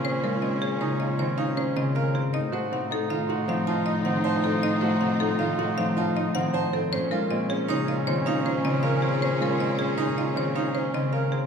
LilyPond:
<<
  \new Staff \with { instrumentName = "Marimba" } { \time 6/4 \key bes \minor \tempo 4 = 157 c''8 bes'8 ees''8 aes'8 des''8 ees''8 des''8 f''8 c''8 ees''8 f''8 aes'8 | ees''8 c''8 ges''8 a'8 f''8 ges''8 f''8 a''8 ees''8 ges''8 a''8 a'8 | ees''8 c''8 ges''8 a'8 f''8 ges''8 f''8 a''8 ees''8 ges''8 a''8 a'8 | c''8 bes'8 ees''8 aes'8 des''8 ees''8 des''8 f''8 c''8 ees''8 f''8 aes'8 |
c''8 bes'8 ees''8 aes'8 des''8 ees''8 des''8 f''8 c''8 ees''8 f''8 aes'8 | }
  \new Staff \with { instrumentName = "String section" } { \time 6/4 \key bes \minor <des' aes'>1~ <des' aes'>4. r8 | <ees' f'>1.~ | <ees' f'>1~ <ees' f'>4. r8 | <des' aes'>1.~ |
<des' aes'>1~ <des' aes'>4. r8 | }
  \new Staff \with { instrumentName = "Grand piano" } { \time 6/4 \key bes \minor des'8 f'8 c'8 des'8 ees'8 f'8 c'8 ees'8 des'8 c'8 bes'8 c'8 | ees'8 ges'8 c'8 ees'8 f'8 ges'8 c'8 f'8 ees'8 c'8 c''8 c'8 | ees'8 ges'8 c'8 ees'8 f'8 ges'8 c'8 f'8 ees'8 c'8 c''8 c'8 | des'8 f'8 c'8 des'8 ees'8 f'8 c'8 ees'8 des'8 c'8 bes'8 c'8 |
des'8 f'8 c'8 des'8 ees'8 f'8 c'8 ees'8 des'8 c'8 bes'8 c'8 | }
  \new Staff \with { instrumentName = "Oboe" } { \time 6/4 \key bes \minor des'1~ des'4. r8 | ees'1.~ | ees'1~ ees'4. r8 | des'1.~ |
des'1~ des'4. r8 | }
  \new Staff \with { instrumentName = "Harp" } { \clef bass \time 6/4 \key bes \minor <bes, des ees f aes>8 aes4. des4 ees4. des4. | r8 a8 c4 ees4 f4. ees4.~ | ees8 a8 c4 ees4 f4. ees4. | r8 aes8 bes,4 des4 ees4. des4.~ |
des8 aes4. des4 ees4. des4. | }
  \new Staff \with { instrumentName = "Cello" } { \clef bass \time 6/4 \key bes \minor bes,1. | a,1.~ | a,1. | bes,1.~ |
bes,1. | }
>>